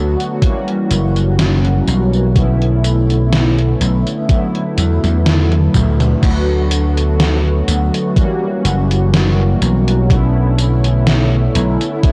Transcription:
Already playing: slap bass D2, analog polysynth D3 F#3 A3 B3 F#4
0.20 closed hi-hat, tambourine
0.40 analog polysynth E3 G3 A#3 C#4 F#4, kick, closed hi-hat, tambourine
0.68 closed hi-hat
0.91 slap bass F#1, closed hi-hat, tambourine
1.16 closed hi-hat, tambourine
1.39 snare, closed hi-hat, tambourine
1.65 closed hi-hat
1.88 slap bass B1, closed hi-hat, tambourine
2.13 tambourine
2.34 analog polysynth D3 A3 B3 C#4 E4, kick, closed hi-hat, tambourine
2.62 closed hi-hat
2.84 closed hi-hat, tambourine
3.10 closed hi-hat, tambourine
3.33 snare, closed hi-hat, tambourine
3.59 closed hi-hat
3.81 slap bass B1, closed hi-hat, tambourine
4.07 closed hi-hat, tambourine
4.28 analog polysynth D3 F#3 A3 B3 E4, kick, closed hi-hat, tambourine
4.55 closed hi-hat
4.78 slap bass E2, closed hi-hat, high tom, tambourine
5.04 slap bass E2, closed hi-hat, high tom, tambourine
5.26 snare, closed hi-hat, mid tom, tambourine
5.52 closed hi-hat, mid tom
5.74 slap bass D2, kick, closed hi-hat, mid tom, tambourine
6.00 closed hi-hat, mid tom, tambourine
6.21 slap bass D2, analog polysynth D3 F#3 A3 B3 F#4, kick, closed hi-hat, crash, tambourine
6.71 closed hi-hat, tambourine
6.97 closed hi-hat, tambourine
7.20 snare, closed hi-hat, tambourine
7.68 slap bass D2, closed hi-hat, tambourine
7.94 closed hi-hat, tambourine
8.15 analog polysynth E3 G3 A#3 C#4 F#4, kick, closed hi-hat, tambourine
8.65 slap bass F#1, closed hi-hat, tambourine
8.91 closed hi-hat, tambourine
9.14 snare, closed hi-hat, tambourine
9.62 slap bass B1, closed hi-hat, tambourine
9.88 closed hi-hat, tambourine
10.09 analog polysynth D3 A3 B3 C#4 E4, kick, closed hi-hat, tambourine
10.58 closed hi-hat, tambourine
10.84 closed hi-hat, tambourine
11.07 snare, closed hi-hat, tambourine
11.55 slap bass B1, closed hi-hat, tambourine
11.81 closed hi-hat, tambourine
12.02 analog polysynth D3 F#3 A3 B3 E4, kick, closed hi-hat, tambourine

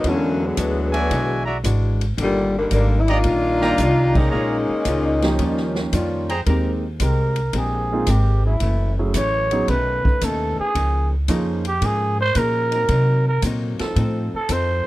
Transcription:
0.04 upright bass E2, hollow-body jazz guitar E3 G#3 D4 F#4, grand piano F#3 G#3 B3 D4 E4, kick, ride
0.08 saxophone section D3 F#3 A#3 C#4
0.45 saxophone section D3 F#3 G#3 B3
0.57 upright bass D2, hollow-body jazz guitar E3 G#3 D4 F#4, kick, hi-hat pedal, ride
0.93 trumpet section F#4 D5 E5 G#5, ride
1.11 upright bass B1, hollow-body jazz guitar E3 G#3 D4 F#4, kick, ride
1.46 trumpet section F#4 D5 E5 A#5
1.64 upright bass G#1, hollow-body jazz guitar E3 G#3 D4 F#4, kick, hi-hat pedal, ride
2.01 ride
2.17 upright bass G1, hollow-body jazz guitar D#3 G3 A#3 D4, kick, ride
2.22 saxophone section A#2 D3 D#3 G3
2.58 saxophone section D3 D#3 G3 A#3
2.71 upright bass G#1, saxophone section D3 D#3 G3 A#3, hollow-body jazz guitar D#3 G3 A#3 D4, kick, hi-hat pedal, ride
3.00 saxophone section E4
3.08 saxophone section A#3 D4 D#4 F4, trumpet section G4 D5 D#5 A#5, ride
3.24 upright bass A#1, hollow-body jazz guitar D#3 G3 A#3, kick, ride
3.28 hollow-body jazz guitar D4
3.61 grand piano D#3 G3 A#3 D4 F4, trumpet section G4 D5 G5 A#5, snare
3.78 upright bass C2, hollow-body jazz guitar D#3 G3 A#3 D4, kick, hi-hat pedal, ride
4.15 saxophone section G#3 A#3 C#4 D#4, kick, crash
4.31 upright bass A#1, hollow-body jazz guitar A#2 G#3 C#4, trumpet section G#4 C#5 F5 A#5
4.35 hollow-body jazz guitar F4
4.70 muted upright bass stroke
4.85 upright bass C#2, hollow-body jazz guitar A#2 G#3 C#4 F4, kick, hi-hat pedal, ride
5.22 grand piano F3 A#3 C#4 D#4 G4, snare, ride
5.39 upright bass D#2, hollow-body jazz guitar D#3 G3 C#4, kick, ride
5.43 hollow-body jazz guitar F4
5.57 snare
5.75 snare
5.92 upright bass F2, hollow-body jazz guitar D#3 G3 C#4 F4, grand piano F3 A#3 C#4 D#4 F4, kick, hi-hat pedal, ride
6.29 trumpet section G#4 C5 G5 A#5, ride
6.46 upright bass D#2, trombone section G#3 C4 G4 A#4, hollow-body jazz guitar G#3 C4 G4 A#4, grand piano G#3 A#3 C4 D#4 G4, kick, ride
7.00 upright bass C2, hollow-body jazz guitar G#3 C4 G4 A#4, kick, hi-hat pedal, ride
7.05 trumpet A#4
7.36 ride
7.53 upright bass A#1, hollow-body jazz guitar G#3 C4 G4 A#4, kick, ride
7.58 trumpet G#4
7.92 grand piano G#3 A#3 C4 D#4 F4
8.07 upright bass G#1, hollow-body jazz guitar G#3 C4 G4 A#4, kick, hi-hat pedal, ride
8.11 trumpet G4
8.43 trombone section F#3 C#4 E4 G#4, trumpet E4
8.60 upright bass F#1, hollow-body jazz guitar F#2 E3 A3 C#4, kick, ride
8.99 grand piano F#3 A3 C#4 E4 G#4
9.14 upright bass A1, hollow-body jazz guitar F#2 E3 A3 C#4, trumpet C#5, kick, hi-hat pedal, ride
9.51 grand piano F#3 B3 C#4 D#4 G#4, ride
9.68 upright bass B1, hollow-body jazz guitar B2 D#3 A3 C#4, trumpet B4, kick, ride
10.03 trombone section A3 C#4 D#4 B4, muted upright bass stroke, kick
10.21 upright bass D#2, hollow-body jazz guitar B2 D#3 A3 C#4, trumpet A4, kick, hi-hat pedal, ride
10.59 trumpet G#4, muted upright bass stroke
10.75 upright bass C#2, hollow-body jazz guitar C#3 F3 A#3 D#4, kick, ride
11.28 upright bass F2, hollow-body jazz guitar C#3 F3 A#3 D#4, grand piano F3 A#3 C#4 D#4 G#4, kick, hi-hat pedal, ride
11.65 trumpet G4, ride
11.81 upright bass G#2, hollow-body jazz guitar C#3 F3 A#3 D#4, trumpet G#4, kick, ride
12.21 trumpet C5
12.35 upright bass A#2, hollow-body jazz guitar C#3 F3 A#3 D#4, trumpet A#4, kick, hi-hat pedal, ride
12.71 trombone section F#3 C4 D#4 A#4, ride
12.88 upright bass C3, hollow-body jazz guitar C3 F#3 A#3, kick, ride
12.93 hollow-body jazz guitar D#4
13.28 trumpet A#4
13.42 upright bass A#2, hollow-body jazz guitar C3 F#3 A#3, kick, hi-hat pedal, ride
13.46 hollow-body jazz guitar D#4
13.79 trombone section F3 C4 D#4 A4, muted upright bass stroke, snare, ride
13.96 upright bass A2, hollow-body jazz guitar F3 C4 D#4, kick, ride
14.00 hollow-body jazz guitar A4
14.33 trumpet A4, muted upright bass stroke
14.49 upright bass F2, hollow-body jazz guitar F3 C4 D#4 A4, trumpet C5, kick, hi-hat pedal, ride

